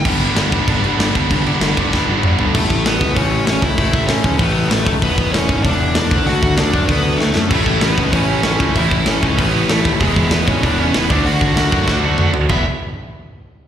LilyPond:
<<
  \new Staff \with { instrumentName = "Lead electric guitar" } { \time 4/4 \key a \major \tempo 4 = 193 r1 | r1 | <a a'>4 <b b'>4 <cis' cis''>4 <cis' cis''>8 <e' e''>8~ | <e' e''>4 <cis' cis''>4 <b b'>8 <b b'>8 <a a'>8. r16 |
<b b'>4 <cis' cis''>4 <d' d''>4 <d' d''>4 | <fis' fis''>4 <d' d''>4 <b b'>4 <a a'>8. r16 | <a a'>4 <b b'>4 <cis' cis''>4 <cis' cis''>4 | <e' e''>4 <cis' cis''>4 <b b'>4 <a a'>8. r16 |
<gis gis'>4 <b b'>8 <cis' cis''>8 <d' d''>8 <cis' cis''>8 <b b'>8 <d' d''>8 | <fis' fis''>2.~ <fis' fis''>8 r8 | e''8 r2. r8 | }
  \new Staff \with { instrumentName = "Distorted electric guitar" } { \clef bass \time 4/4 \key a \major <g, d g b d'>8 <g, d g b d'>8 <g, d g b d'>8 <g, d g b d'>8 <g, d g b d'>8 <g, d g b d'>8 <g, d g b d'>8 <g, d g b d'>8 | <g, d g b d'>8 <g, d g b d'>8 <g, d g b d'>8 <g, d g b d'>8 <g, d g b d'>8 <g, d g b d'>8 <g, d g b d'>8 <g, d g b d'>8 | r1 | r1 |
r1 | r1 | <a, e a cis' e'>2~ <a, e a cis' e'>8 <a, e a cis' e'>8 <a, e a cis' e'>4 | <a, e a cis' e'>2~ <a, e a cis' e'>8 <a, e a cis' e'>8 <a, e a cis' e'>4 |
<e gis b e'>2~ <e gis b e'>8 <e gis b e'>8 <e gis b e'>8 <d fis a d'>8~ | <d fis a d'>2 <d fis a d'>8 <d fis a d'>4 r8 | <e gis b e'>8 r2. r8 | }
  \new Staff \with { instrumentName = "Overdriven electric guitar" } { \clef bass \time 4/4 \key a \major <g, d g>8 <g, d g>8 <g, d g>8 <g, d g>8 <g, d g>8 <g, d g>8 <g, d g>8 <g, d g>8 | <g, d g>8 <g, d g>8 <g, d g>8 <g, d g>8 <g, d g>8 <g, d g>8 <g, d g>8 <g, d g>8 | <a, e a>2 <a, e a>2 | <a, e a>2 <a, e a>2 |
<e, b, e>2 <e, b, e>4. <d a d'>8~ | <d a d'>4. <d a d'>2 r8 | <a, e a>2 <a, e a>2 | <a, e a>2 <a, e a>2 |
<e, b, e>2 <e, b, e>4. <d a d'>8~ | <d a d'>4. <d a d'>2 r8 | <e, b, e>8 r2. r8 | }
  \new Staff \with { instrumentName = "Picked electric bass" } { \clef bass \time 4/4 \key a \major g,,8 g,,8 g,,4 g,,8 g,,8 g,,8 g,,8 | g,,4 g,,8 g,,8 g,,8 g,,8 g,,8 g,,8 | a,,8 a,,8 a,,8 cis,8 a,,4 a,,8 cis,8 | a,,8 a,,8 a,,8 cis,8 a,,4 a,,8 cis,8 |
e,,8 e,,8 e,,8 gis,,8 e,,4 e,,8 d,8 | d,8 d,8 d,8 fis,8 d,4 d,8 fis,8 | a,,8 a,,8 a,,8 cis,8 a,,4 a,,8 cis,8 | a,,8 a,,8 a,,8 cis,8 a,,4 a,,8 dis,8 |
e,,8 e,,8 e,,8 gis,,8 e,,4 e,,8 d,8 | d,8 d,8 d,8 fis,8 d,4 d,8 d,8 | e,,8 r2. r8 | }
  \new DrumStaff \with { instrumentName = "Drums" } \drummode { \time 4/4 <cymc bd>8 cymc8 <cymc sn>8 <cymc bd>8 <cymc bd>8 cymc8 <cymc sn>8 <cymc bd>8 | <cymc bd>8 cymc8 <cymc sn>8 <cymc bd>8 <bd sn>4 toml8 tomfh8 | <cymc bd>8 bd8 <hho sn>8 bd8 <hho bd>4 <hho sn>8 bd8 | <hho bd>8 bd8 <hho sn>8 bd8 <hho bd>4 <hho sn>8 bd8 |
<hho bd>8 bd8 <hho sn>8 bd8 <hho bd>4 <hho sn>8 bd8 | hho8 bd8 <hho sn>8 bd8 <hho bd>4 sn8 sn8 | <cymc bd>8 bd8 <hho sn>8 bd8 <hho bd>4 <hho sn>8 bd8 | <hho bd>8 bd8 <hho sn>8 bd8 <hho bd>4 <hho sn>8 bd8 |
<hho bd>8 bd8 <hho sn>8 bd8 <hho bd>4 <hho sn>8 bd8 | hho8 bd8 <hho sn>8 bd8 <bd sn>4 toml8 tomfh8 | <cymc bd>4 r4 r4 r4 | }
>>